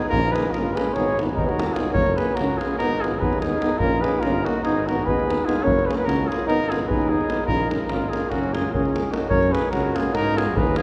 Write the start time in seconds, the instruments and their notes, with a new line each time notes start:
0.09 tuba A#1, flugelhorn F4, trumpet A#4
0.13 trombone A#3, euphonium C#4, davul low
0.25 davul high
0.32 flugelhorn G#4, trumpet B4, davul high
0.36 trombone A#3, euphonium C#4
0.45 davul high
0.51 tuba G1, flugelhorn F4, trumpet A#4, davul high
0.55 trombone A#3, euphonium C#4
0.66 davul high
0.73 flugelhorn G#4, trumpet B4, davul high
0.78 trombone A#3, euphonium C#4
0.87 davul high
0.93 tuba G#1, flugelhorn G#4, trumpet C#5, davul high, davul low
0.98 trombone B3, euphonium D#4
1.08 davul high
1.19 trombone B3, euphonium D#4, davul high
1.29 davul high
1.35 tuba D#2, trombone B3, flugelhorn D#4, trumpet A#4, davul low
1.40 euphonium D#4
1.45 flugelhorn G#4, trumpet A#4 B4, davul high
1.49 flugelhorn F#4
1.59 trombone B3, euphonium D#4, davul high
1.69 trumpet G#4, davul high
1.74 trombone B3, flugelhorn F4, davul high
1.79 euphonium D#4
1.85 davul high
1.93 tuba F#1, trombone A#3, flugelhorn A#4, trumpet C#5, davul low
1.98 euphonium C#4
2.07 davul high
2.16 trombone A#3, flugelhorn G#4, trumpet B4, davul high
2.20 euphonium C#4
2.35 tuba C#2, trombone A#3, flugelhorn F#4, trumpet A#4, davul high
2.39 euphonium C#4
2.57 flugelhorn F4, trumpet G#4, davul high
2.62 trombone A#3, euphonium C#4
2.71 davul high
2.77 tuba G#1, trombone B3, flugelhorn D#4, trumpet A#4, davul high
2.81 euphonium D#4
3.01 trombone B3, flugelhorn F4, trumpet G#4, davul high
3.05 euphonium D#4
3.14 davul high
3.19 tuba D#2, trombone B3, flugelhorn G#4, trumpet B4, davul low
3.24 euphonium D#4
3.33 davul high
3.41 trombone B3, flugelhorn D#4, trumpet G#4, davul high
3.45 euphonium D#4
3.53 davul high
3.62 trombone B3, euphonium D#4, davul high
3.78 tuba A#1, trombone A#3, flugelhorn F4, trumpet A#4, davul low
3.82 euphonium C#4
3.92 davul high
4.01 euphonium C#4, flugelhorn G#4, trumpet B4, davul high
4.05 trombone A#3
4.20 flugelhorn F4, trumpet A#4, davul high
4.24 tuba G1, trombone A#3, euphonium C#4
4.43 euphonium C#4, flugelhorn D#4, trumpet F#4, davul high
4.47 trombone A#3
4.56 davul high
4.63 tuba G#1, trombone B3, flugelhorn D#4, euphonium D#4, trumpet G#4, davul high
4.86 trombone B3, euphonium D#4, flugelhorn F#4, trumpet A#4, davul high
4.99 davul high
5.05 tuba D#2, trombone B3, euphonium D#4, flugelhorn G#4, trumpet B4, davul low
5.20 davul high
5.29 trombone B3, euphonium D#4, davul high
5.40 davul high
5.45 trombone B3, euphonium D#4, flugelhorn F4, trumpet G#4
5.49 davul high
5.63 tuba F#1, trombone A#3, euphonium C#4, flugelhorn A#4, trumpet C#5
5.67 davul low
5.79 davul high
5.86 trombone A#3, euphonium C#4, flugelhorn G#4, trumpet B4
5.91 trumpet C#5, davul high
5.96 flugelhorn A#4, trumpet B4
6.05 tuba C#2, trombone A#3, euphonium C#4, flugelhorn F#4, trumpet A#4
6.09 davul high
6.27 trombone A#3, euphonium C#4, flugelhorn F4, trumpet G#4
6.32 davul high
6.41 davul high
6.47 tuba G#1, trombone B3, flugelhorn D#4, euphonium D#4, trumpet A#4, davul high
6.69 trombone B3, euphonium D#4, flugelhorn F4, trumpet G#4, davul high
6.81 davul high
6.87 tuba D#2, trombone B3, euphonium D#4, flugelhorn G#4, trumpet B4
6.91 davul low
7.01 davul high
7.09 trombone B3, flugelhorn D#4, euphonium D#4, trumpet G#4
7.21 davul high
7.29 trombone B3, euphonium D#4, davul high
7.46 tuba A#1, trombone A#3, euphonium C#4, flugelhorn F4, trumpet A#4, davul low
7.60 davul high
7.71 trombone A#3, euphonium C#4, davul high
7.81 davul high
7.88 tuba G#1, trombone A#3, euphonium C#4, flugelhorn F4, trumpet A#4, davul high
8.02 davul high
8.09 trombone A#3, flugelhorn F4, trumpet G#4
8.13 euphonium C#4, davul high
8.22 davul high
8.30 tuba F#1, trombone A#3, flugelhorn C#4, euphonium C#4, trumpet F#4, davul high, davul low
8.43 davul high
8.53 trombone A#3, euphonium C#4, flugelhorn F4, trumpet G#4, davul high
8.72 tuba C#2, trombone A#3, flugelhorn C#4, euphonium C#4, trumpet G#4, davul low
8.85 davul high
8.94 trombone A#3, euphonium C#4, davul high
9.05 davul high
9.11 trombone A#3, flugelhorn D#4, trumpet F#4, davul high
9.15 euphonium C#4
9.23 davul high
9.29 tuba F#2, flugelhorn A#4, trumpet C#5, davul low
9.43 davul high
9.51 trombone A#3, euphonium C#4, flugelhorn G#4, trumpet B4, davul high
9.71 tuba C#2, flugelhorn F#4, trumpet A#4, davul high
9.95 trombone A#3, euphonium C#4, flugelhorn F4, trumpet G#4, davul high
10.05 davul high
10.14 tuba G#2, flugelhorn D#4, trumpet A#4, davul high
10.36 trombone B3, euphonium D#4, flugelhorn F4, trumpet G#4, davul high
10.47 davul high
10.54 tuba D#2, flugelhorn G#4, trumpet B4, davul low
10.67 davul high
10.76 trombone B3, euphonium D#4, flugelhorn F4, trumpet G#4, davul high